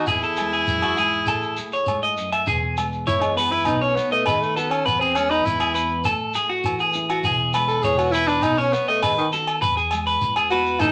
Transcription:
0.07 0.64 E2 medium
0.07 0.68 E2 medium
0.07 2.13 E4 loud
0.07 0.22 G#4 medium
0.07 2.14 G#4 medium
0.07 shekere medium
0.22 0.52 A4 medium
0.22 shekere soft
0.36 1.25 G#3 medium
0.36 low agogo medium
0.36 shekere medium
0.53 0.81 G#4 medium
0.53 shekere soft
0.67 1.23 E2 medium
0.67 0.97 F#2 medium
0.67 shekere medium
0.82 0.97 F#4 medium
0.82 low agogo medium
0.97 1.27 G#2 medium
0.97 1.26 G#4 medium
0.97 shekere medium
1.12 shekere soft
1.26 1.55 A1 medium
1.26 2.47 A2 medium
1.26 1.56 A4 medium
1.26 low agogo medium
1.26 shekere medium
1.42 shekere soft
1.57 2.44 A3 medium
1.57 shekere medium
1.72 2.01 C#5 medium
1.72 shekere soft
1.86 2.17 G#2 medium
1.86 low agogo medium
1.86 shekere medium
2.03 2.31 D#5 medium
2.03 shekere soft
2.17 2.47 F#2 medium
2.17 shekere medium
2.32 2.46 E5 medium
2.32 low agogo medium
2.32 shekere soft
2.47 3.03 E1 medium
2.47 3.67 E2 medium
2.47 2.76 G#4 medium
2.47 shekere medium
2.77 3.64 G#3 medium
2.77 low agogo medium
2.77 shekere medium
2.92 shekere soft
3.07 3.63 F#2 medium
3.07 3.63 E3 medium
3.07 3.23 E4 medium
3.07 3.35 C#5 medium
3.07 shekere medium
3.21 3.37 G#3 medium
3.21 low agogo medium
3.21 shekere soft
3.36 3.53 B3 medium
3.36 3.63 G#4 medium
3.36 3.51 B4 medium
3.36 shekere medium
3.51 3.67 E4 medium
3.51 3.80 B4 medium
3.65 3.94 B1 medium
3.65 4.26 B2 medium
3.65 3.96 B3 medium
3.65 3.83 D#4 medium
3.65 4.83 D#4 medium
3.65 muted nylon-string guitar stroke medium
3.65 low agogo medium
3.65 shekere medium
3.82 3.97 C#4 medium
3.82 4.10 C#5 medium
3.96 4.13 B3 medium
3.96 4.83 B3 medium
3.96 shekere medium
4.12 4.28 A3 medium
4.12 4.26 D#5 medium
4.26 4.82 D#3 medium
4.26 4.43 G#3 medium
4.26 4.55 B4 medium
4.26 low agogo medium
4.26 shekere medium
4.41 4.58 A3 medium
4.41 shekere soft
4.56 4.72 B3 medium
4.56 4.83 F#4 medium
4.56 4.85 A4 medium
4.56 shekere medium
4.71 4.88 C#4 medium
4.71 low agogo medium
4.71 shekere soft
4.86 6.05 E2 medium
4.86 5.42 E2 medium
4.86 5.01 B3 medium
4.86 5.00 B4 medium
4.86 shekere medium
5.00 5.17 C4 medium
5.00 5.29 G#4 medium
5.15 6.02 G#3 medium
5.15 5.32 C#4 medium
5.15 low agogo medium
5.15 shekere medium
5.30 5.47 D#4 medium
5.30 5.59 B4 medium
5.30 shekere soft
5.45 6.01 E2 medium
5.45 6.02 E3 medium
5.45 6.05 E4 medium
5.45 shekere medium
5.60 5.74 G#4 medium
5.60 low agogo medium
5.60 shekere soft
5.75 6.06 B3 medium
5.75 6.03 B4 medium
5.75 shekere medium
6.05 6.33 A1 medium
6.05 7.24 A2 medium
6.05 6.34 A4 medium
6.05 low agogo medium
6.05 shekere medium
6.34 7.21 A3 medium
6.34 6.49 G#4 medium
6.34 shekere medium
6.49 6.78 F#4 medium
6.64 7.21 E3 medium
6.64 low agogo medium
6.64 shekere medium
6.79 7.08 G#4 medium
6.79 shekere soft
6.93 9.33 E4 medium
6.93 shekere medium
7.09 7.24 F#4 medium
7.09 low agogo medium
7.09 shekere soft
7.24 7.80 E1 medium
7.24 8.43 E2 medium
7.24 7.53 G#4 medium
7.24 shekere medium
7.53 8.40 G#3 medium
7.53 7.83 B4 medium
7.53 low agogo medium
7.53 shekere medium
7.68 7.84 A4 medium
7.68 shekere soft
7.82 8.40 E1 medium
7.82 8.40 E3 medium
7.82 7.99 G#4 medium
7.82 8.12 C#5 medium
7.82 shekere medium
7.98 8.13 F#4 medium
7.98 low agogo medium
7.98 shekere soft
8.12 8.73 B3 medium
8.12 8.29 E4 loud
8.12 8.28 B4 medium
8.12 shekere medium
8.28 8.44 D4 medium
8.28 8.57 B4 medium
8.28 shekere soft
8.42 8.71 B1 medium
8.42 9.03 B2 medium
8.42 8.59 D#4 medium
8.42 low agogo medium
8.42 shekere medium
8.58 8.75 C#4 medium
8.58 8.87 C#5 medium
8.73 8.90 B3 medium
8.73 9.59 B3 medium
8.73 shekere medium
8.88 9.05 A3 medium
8.88 9.02 D#5 medium
9.03 9.59 D#3 medium
9.03 9.17 G#3 medium
9.03 9.31 B4 medium
9.03 low agogo medium
9.03 shekere medium
9.18 9.27 D#3 medium
9.18 shekere soft
9.32 9.59 F#4 medium
9.32 9.61 A4 medium
9.32 shekere medium
9.47 low agogo medium
9.47 shekere soft
9.61 10.17 E2 medium
9.61 9.76 B4 medium
9.61 muted nylon-string guitar stroke medium
9.61 shekere medium
9.77 10.05 G#4 medium
9.77 shekere soft
9.91 10.77 G#3 medium
9.91 low agogo medium
9.91 shekere medium
10.07 10.35 B4 medium
10.07 shekere soft
10.21 10.77 E2 medium
10.21 10.77 E3 medium
10.21 shekere medium
10.36 10.50 G#4 medium
10.36 low agogo medium
10.36 shekere soft
10.51 10.81 B3 medium
10.51 10.81 F#4 medium
10.51 10.80 B4 medium
10.66 shekere soft
10.79 10.92 A1 loud
10.79 10.92 A2 medium
10.79 10.92 E3 medium
10.79 10.92 A3 medium
10.79 10.92 D#4 medium
10.79 10.92 A4 medium
10.79 low agogo medium
10.79 shekere loud
10.84 10.92 C#4 medium

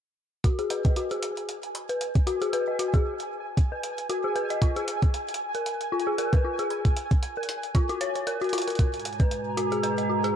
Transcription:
0.44 0.54 F#4 medium
0.44 10.36 G#5 medium
0.44 kick medium
0.44 closed hi-hat medium
0.59 0.66 G#4 medium
0.59 closed hi-hat soft
0.70 0.76 B4 medium
0.70 closed hi-hat medium
0.85 0.90 D#5 medium
0.85 kick loud
0.85 closed hi-hat soft
0.96 1.10 F#4 medium
0.96 closed hi-hat medium
1.11 1.16 G#4 medium
1.11 closed hi-hat soft
1.23 closed hi-hat medium
1.37 closed hi-hat soft
1.49 closed hi-hat medium
1.63 closed hi-hat soft
1.75 closed hi-hat medium
1.89 1.97 B4 medium
1.89 closed hi-hat soft
2.01 closed hi-hat medium
2.15 kick loud
2.15 closed hi-hat soft
2.27 2.36 F#4 loud
2.27 closed hi-hat medium
2.41 2.49 G#4 loud
2.41 closed hi-hat soft
2.53 2.59 B4 medium
2.53 closed hi-hat medium
2.68 2.72 D#5 medium
2.79 2.93 F#4 medium
2.79 closed hi-hat medium
2.94 2.98 G#4 medium
2.94 kick loud
2.94 closed hi-hat soft
3.20 closed hi-hat soft
3.57 kick loud
3.57 closed hi-hat medium
3.72 3.80 B4 medium
3.83 closed hi-hat medium
3.98 closed hi-hat soft
4.09 4.19 F#4 loud
4.09 closed hi-hat medium
4.24 4.32 G#4 medium
4.36 4.41 B4 loud
4.36 closed hi-hat soft
4.50 4.55 D#5 medium
4.50 closed hi-hat soft
4.62 4.76 F4 medium
4.62 kick medium
4.62 closed hi-hat medium
4.76 4.81 G#4 loud
4.76 closed hi-hat soft
4.88 closed hi-hat medium
5.02 kick loud
5.02 closed hi-hat soft
5.14 closed hi-hat medium
5.29 closed hi-hat soft
5.34 closed hi-hat medium
5.55 5.62 A#4 medium
5.55 closed hi-hat soft
5.66 closed hi-hat medium
5.81 closed hi-hat soft
5.92 6.02 F4 medium
6.00 closed hi-hat soft
6.07 6.14 G#4 medium
6.18 6.24 A#4 medium
6.18 closed hi-hat medium
6.33 6.37 B4 medium
6.33 kick loud
6.33 closed hi-hat soft
6.44 6.58 F4 medium
6.59 6.64 G#4 medium
6.59 closed hi-hat soft
6.70 closed hi-hat medium
6.85 kick medium
6.85 closed hi-hat soft
6.97 closed hi-hat medium
7.11 kick loud
7.11 closed hi-hat soft
7.23 closed hi-hat medium
7.37 7.45 A#4 medium
7.43 closed hi-hat soft
7.49 closed hi-hat medium
7.63 closed hi-hat soft
7.75 7.84 F4 medium
7.75 kick loud
7.75 closed hi-hat medium
7.89 7.97 F#4 loud
7.89 closed hi-hat soft
8.01 8.14 C#5 medium
8.01 closed hi-hat medium
8.15 8.20 C#5 medium
8.15 closed hi-hat soft
8.27 8.37 A#4 loud
8.27 closed hi-hat medium
8.41 8.52 F#4 medium
8.41 closed hi-hat soft
8.44 closed hi-hat soft
8.49 8.63 F4 medium
8.49 closed hi-hat soft
8.53 closed hi-hat medium
8.58 closed hi-hat medium
8.62 closed hi-hat medium
8.68 8.75 A#4 medium
8.68 closed hi-hat soft
8.70 closed hi-hat soft
8.75 10.36 G#2 medium
8.75 10.36 B2 medium
8.75 10.36 G#3 medium
8.75 10.36 F#4 medium
8.75 10.36 A#5 medium
8.75 kick medium
8.75 closed hi-hat soft
8.79 closed hi-hat medium
8.94 closed hi-hat soft
8.99 closed hi-hat soft
9.05 closed hi-hat medium
9.13 closed hi-hat soft
9.20 9.27 B4 medium
9.20 kick loud
9.20 closed hi-hat soft
9.31 closed hi-hat medium
9.57 9.67 F#4 loud
9.57 closed hi-hat medium
9.72 9.79 G#4 medium
9.72 closed hi-hat soft
9.83 9.89 B4 medium
9.83 closed hi-hat medium
9.98 10.03 D#5 medium
9.98 closed hi-hat soft
10.09 10.23 F#4 medium
10.24 10.29 G#4 loud
10.24 closed hi-hat soft

